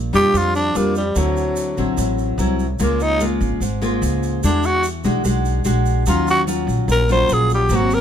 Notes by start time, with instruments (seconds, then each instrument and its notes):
Already playing: nylon-string guitar A#2
0.13 upright bass F2, nylon-string guitar G3 D4 F4, tenor saxophone G4, shaker
0.33 upright bass F2, nylon-string guitar F3, shaker
0.37 tenor saxophone F4
0.55 tenor saxophone D4, shaker
0.75 upright bass F2, nylon-string guitar G3 D4 F4, tenor saxophone A#3, shaker
0.95 tenor saxophone G3, shaker
1.15 upright bass D2, nylon-string guitar D3 F#3 C4 E4, tenor saxophone F#3, shaker
1.37 shaker
1.56 shaker
1.77 upright bass A1, nylon-string guitar F#3 C4 E4, shaker
1.97 upright bass A1, nylon-string guitar A2, shaker
2.18 shaker
2.38 upright bass C2, nylon-string guitar F#3 C4 E4, shaker
2.59 shaker
2.79 upright bass C#2, nylon-string guitar C#3 G#3 A#3 F4, tenor saxophone A#3, shaker
3.00 tenor saxophone D#4, shaker
3.20 nylon-string guitar G#3 A#3 F4, shaker
3.41 upright bass G#1, shaker
3.60 upright bass G#1, nylon-string guitar G#2, shaker
3.82 nylon-string guitar G#3 A#3 F4, shaker
4.02 upright bass C#2, shaker
4.23 shaker
4.43 upright bass E2, nylon-string guitar E3 G#3 D4 F#4, tenor saxophone D4, shaker
4.63 tenor saxophone F#4, shaker
4.84 shaker
5.04 upright bass B1, nylon-string guitar G#3 D4 F#4, shaker
5.25 upright bass B1, nylon-string guitar G#3 D4 F#4, shaker
5.45 shaker
5.64 upright bass A#1, nylon-string guitar G#3 D4 F#4, shaker
5.85 shaker
6.06 upright bass D#2, nylon-string guitar D#3 F#3 C#4 F4, tenor saxophone F4, shaker
6.28 tenor saxophone F#4, shaker
6.47 nylon-string guitar F#3 C#4 F4, shaker
6.67 upright bass A#1, shaker
6.88 upright bass A#1, nylon-string guitar A#2, tenor saxophone A#4, shaker
7.09 nylon-string guitar F#3 C#4 F4, tenor saxophone C5, shaker
7.29 upright bass A#1, shaker
7.33 tenor saxophone G#4
7.50 shaker
7.55 tenor saxophone G4
7.69 upright bass G#1, nylon-string guitar G#2 F#3 A#3 C4, shaker
7.75 tenor saxophone F#4
7.90 tenor saxophone A#4, shaker